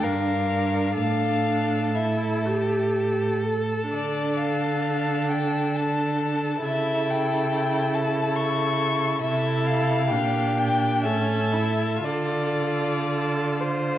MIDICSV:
0, 0, Header, 1, 5, 480
1, 0, Start_track
1, 0, Key_signature, -1, "minor"
1, 0, Tempo, 967742
1, 496, Time_signature, 3, 2, 24, 8
1, 1944, Tempo, 921659
1, 2424, Tempo, 903614
1, 3384, Tempo, 867052
1, 5304, Tempo, 933126
1, 5784, Tempo, 985222
1, 6264, Tempo, 1034483
1, 7168, End_track
2, 0, Start_track
2, 0, Title_t, "Violin"
2, 0, Program_c, 0, 40
2, 15, Note_on_c, 0, 77, 53
2, 482, Note_off_c, 0, 77, 0
2, 485, Note_on_c, 0, 77, 64
2, 971, Note_on_c, 0, 76, 42
2, 978, Note_off_c, 0, 77, 0
2, 1459, Note_off_c, 0, 76, 0
2, 1944, Note_on_c, 0, 74, 50
2, 2182, Note_on_c, 0, 77, 45
2, 2190, Note_off_c, 0, 74, 0
2, 2666, Note_on_c, 0, 79, 48
2, 2674, Note_off_c, 0, 77, 0
2, 2911, Note_on_c, 0, 81, 47
2, 2919, Note_off_c, 0, 79, 0
2, 3381, Note_off_c, 0, 81, 0
2, 3385, Note_on_c, 0, 76, 59
2, 3635, Note_on_c, 0, 79, 52
2, 3643, Note_off_c, 0, 76, 0
2, 4101, Note_on_c, 0, 81, 49
2, 4109, Note_off_c, 0, 79, 0
2, 4331, Note_on_c, 0, 85, 61
2, 4339, Note_off_c, 0, 81, 0
2, 4802, Note_off_c, 0, 85, 0
2, 4805, Note_on_c, 0, 76, 63
2, 5055, Note_on_c, 0, 77, 64
2, 5064, Note_off_c, 0, 76, 0
2, 5546, Note_on_c, 0, 79, 66
2, 5554, Note_off_c, 0, 77, 0
2, 5786, Note_off_c, 0, 79, 0
2, 5788, Note_on_c, 0, 76, 57
2, 6268, Note_on_c, 0, 74, 57
2, 6275, Note_off_c, 0, 76, 0
2, 7168, Note_off_c, 0, 74, 0
2, 7168, End_track
3, 0, Start_track
3, 0, Title_t, "Violin"
3, 0, Program_c, 1, 40
3, 17, Note_on_c, 1, 70, 36
3, 488, Note_off_c, 1, 70, 0
3, 491, Note_on_c, 1, 69, 41
3, 3360, Note_off_c, 1, 69, 0
3, 3379, Note_on_c, 1, 69, 38
3, 4788, Note_off_c, 1, 69, 0
3, 4815, Note_on_c, 1, 69, 44
3, 5282, Note_off_c, 1, 69, 0
3, 5304, Note_on_c, 1, 67, 51
3, 5783, Note_on_c, 1, 69, 44
3, 5790, Note_off_c, 1, 67, 0
3, 6263, Note_off_c, 1, 69, 0
3, 6266, Note_on_c, 1, 69, 39
3, 6693, Note_off_c, 1, 69, 0
3, 6751, Note_on_c, 1, 69, 39
3, 6991, Note_on_c, 1, 72, 45
3, 6998, Note_off_c, 1, 69, 0
3, 7168, Note_off_c, 1, 72, 0
3, 7168, End_track
4, 0, Start_track
4, 0, Title_t, "Viola"
4, 0, Program_c, 2, 41
4, 0, Note_on_c, 2, 62, 41
4, 958, Note_off_c, 2, 62, 0
4, 974, Note_on_c, 2, 64, 38
4, 1214, Note_on_c, 2, 67, 46
4, 1221, Note_off_c, 2, 64, 0
4, 1705, Note_on_c, 2, 69, 33
4, 1712, Note_off_c, 2, 67, 0
4, 1941, Note_off_c, 2, 69, 0
4, 1944, Note_on_c, 2, 62, 35
4, 3363, Note_off_c, 2, 62, 0
4, 3383, Note_on_c, 2, 64, 38
4, 4790, Note_off_c, 2, 64, 0
4, 4816, Note_on_c, 2, 64, 45
4, 5300, Note_on_c, 2, 62, 42
4, 5308, Note_off_c, 2, 64, 0
4, 5783, Note_on_c, 2, 61, 48
4, 5790, Note_off_c, 2, 62, 0
4, 6019, Note_on_c, 2, 64, 39
4, 6026, Note_off_c, 2, 61, 0
4, 6258, Note_off_c, 2, 64, 0
4, 6261, Note_on_c, 2, 65, 37
4, 7168, Note_off_c, 2, 65, 0
4, 7168, End_track
5, 0, Start_track
5, 0, Title_t, "Cello"
5, 0, Program_c, 3, 42
5, 21, Note_on_c, 3, 43, 46
5, 491, Note_off_c, 3, 43, 0
5, 494, Note_on_c, 3, 45, 37
5, 1820, Note_off_c, 3, 45, 0
5, 1942, Note_on_c, 3, 50, 37
5, 3362, Note_off_c, 3, 50, 0
5, 3383, Note_on_c, 3, 49, 40
5, 4790, Note_off_c, 3, 49, 0
5, 4813, Note_on_c, 3, 48, 49
5, 5306, Note_on_c, 3, 46, 51
5, 5313, Note_off_c, 3, 48, 0
5, 5785, Note_on_c, 3, 45, 49
5, 5793, Note_off_c, 3, 46, 0
5, 6262, Note_off_c, 3, 45, 0
5, 6265, Note_on_c, 3, 50, 43
5, 7168, Note_off_c, 3, 50, 0
5, 7168, End_track
0, 0, End_of_file